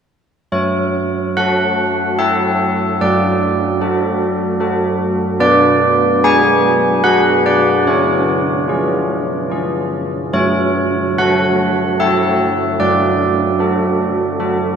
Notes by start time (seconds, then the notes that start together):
0.52 F#3 C#5
1.37 F#4 A4 F#5
2.19 F#4 A4 E5
3.01 F#3 D5
3.81 F#4 A4
4.60 F#4 A4
5.40 B3 D5
6.24 F#4 G#4 G#5
7.04 F#4 G#4 F#5
7.46 D5
7.86 C#4 C#5
8.68 F4 G#4
9.50 F4 G#4
10.33 F#3 C#5
11.18 F#4 A4 F#5
11.99 F#4 A4 E5
12.80 F#3 D5
13.59 F#4 A4
14.40 F#4 A4